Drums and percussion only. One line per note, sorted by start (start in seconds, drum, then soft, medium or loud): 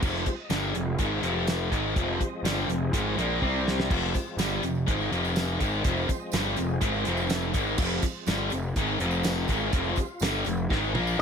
0.03 kick loud
0.03 crash loud
0.16 snare soft
0.26 kick medium
0.26 closed hi-hat medium
0.50 snare loud
0.50 closed hi-hat medium
0.50 tambourine loud
0.75 closed hi-hat medium
0.99 kick medium
0.99 closed hi-hat medium
1.23 closed hi-hat medium
1.47 snare loud
1.47 closed hi-hat loud
1.47 tambourine loud
1.72 kick medium
1.72 closed hi-hat medium
1.96 kick loud
1.96 closed hi-hat loud
2.21 kick medium
2.21 closed hi-hat medium
2.45 snare loud
2.45 closed hi-hat loud
2.45 tambourine loud
2.69 closed hi-hat medium
2.93 kick medium
2.93 closed hi-hat medium
3.19 closed hi-hat medium
3.42 kick medium
3.68 snare medium
3.80 snare loud
3.91 kick loud
3.91 crash loud
4.02 snare soft
4.02 tambourine soft
4.14 kick medium
4.14 closed hi-hat medium
4.14 tambourine medium
4.38 snare loud
4.38 closed hi-hat loud
4.38 tambourine medium
4.38 tambourine loud
4.51 tambourine soft
4.63 closed hi-hat medium
4.63 tambourine medium
4.75 tambourine soft
4.88 kick medium
4.88 closed hi-hat medium
5.00 tambourine soft
5.12 closed hi-hat medium
5.12 tambourine soft
5.25 tambourine medium
5.36 snare loud
5.36 closed hi-hat medium
5.36 tambourine loud
5.36 tambourine medium
5.49 tambourine soft
5.60 kick medium
5.60 closed hi-hat medium
5.60 tambourine medium
5.84 kick loud
5.84 closed hi-hat loud
5.97 tambourine soft
6.09 kick medium
6.09 closed hi-hat medium
6.09 tambourine medium
6.32 closed hi-hat loud
6.32 tambourine loud
6.33 snare loud
6.33 tambourine loud
6.56 closed hi-hat medium
6.56 tambourine medium
6.81 kick medium
6.81 closed hi-hat medium
6.93 tambourine soft
7.05 closed hi-hat medium
7.05 tambourine soft
7.17 tambourine medium
7.29 snare loud
7.29 closed hi-hat loud
7.29 tambourine medium
7.29 tambourine loud
7.53 kick medium
7.53 closed hi-hat medium
7.53 tambourine medium
7.67 tambourine soft
7.78 kick loud
7.78 crash loud
7.90 tambourine soft
8.02 kick medium
8.02 closed hi-hat medium
8.02 tambourine medium
8.26 snare loud
8.26 closed hi-hat medium
8.26 tambourine loud
8.50 closed hi-hat medium
8.50 tambourine medium
8.62 tambourine soft
8.76 kick medium
8.76 closed hi-hat medium
8.87 tambourine soft
8.99 closed hi-hat medium
8.99 tambourine soft
9.11 tambourine medium
9.23 snare loud
9.23 closed hi-hat medium
9.23 tambourine medium
9.23 tambourine loud
9.48 kick medium
9.48 closed hi-hat medium
9.48 tambourine medium
9.72 kick loud
9.72 closed hi-hat loud
9.72 tambourine soft
9.83 tambourine soft
9.96 kick medium
9.96 closed hi-hat medium
9.96 tambourine medium
10.07 tambourine soft
10.20 closed hi-hat loud
10.20 tambourine loud
10.22 snare loud
10.22 tambourine loud
10.45 closed hi-hat medium
10.45 tambourine medium
10.57 tambourine soft
10.70 kick medium
10.70 snare medium
10.70 tambourine soft
10.83 tambourine soft
10.95 high tom medium
10.95 tambourine soft
11.07 tambourine medium